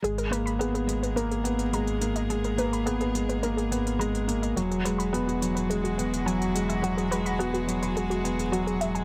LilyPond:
<<
  \new Staff \with { instrumentName = "Synth arpeggio sound" } { \time 4/4 \key gis \minor \tempo 4 = 106 gis'16 ais'16 b'16 b''16 gis'16 gis'16 r16 b'16 ais'16 gis'16 r8 ais''16 r8 dis''16 | gis'16 ais'16 b'16 b''16 gis'16 gis'16 r16 b'16 ais'16 gis'16 r8 ais''16 r8 dis''16 | fis'16 gis'16 b'16 b''16 fis'16 fis'16 r16 b'16 gis'16 fis'16 r8 gis''16 r8 e''16 | fis'16 gis'16 b'16 b''16 fis'16 fis'16 r16 b'16 gis'16 fis'16 r8 fis'16 gis'16 e''16 gis''16 | }
  \new Staff \with { instrumentName = "String quartet" } { \time 4/4 \key gis \minor <dis gis' ais'>1~ | <dis gis' ais'>1 | <e gis fis'>1~ | <e gis fis'>1 | }
  \new Staff \with { instrumentName = "Felt piano" } { \clef bass \time 4/4 \key gis \minor gis8 ais8 b8 gis8 ais8 b8 gis8 ais8 | gis8 ais8 b8 gis8 ais8 b8 gis8 ais8 | fis8 gis8 b8 fis8 gis8 b8 fis8 gis8 | fis8 gis8 b8 fis8 gis8 b8 fis8 gis8 | }
  \new Staff \with { instrumentName = "Analog synth bass" } { \clef bass \time 4/4 \key gis \minor gis,,1~ | gis,,1 | e,,1~ | e,,1 | }
  \new DrumStaff \with { instrumentName = "Drums" } \drummode { \time 4/4 hh16 hh16 hh16 hh16 hh16 hh16 hh16 hh16 hh16 hh16 hh16 hh16 hh16 hh16 hh16 hh16 | hh16 hh16 hh16 hh16 hh16 hh16 hh16 hh16 hh16 hh16 hh16 hh16 hh16 hh16 hh16 hh16 | hh16 hh16 hh16 hh16 hh16 hh16 hh16 hh16 hh16 hh16 hh16 hh16 hh16 hh16 hh16 hh16 | hh16 hh16 hh16 hh16 hh16 hh16 hh16 hh16 hh16 hh16 hh16 hh16 hh16 hh16 hh16 hh16 | }
>>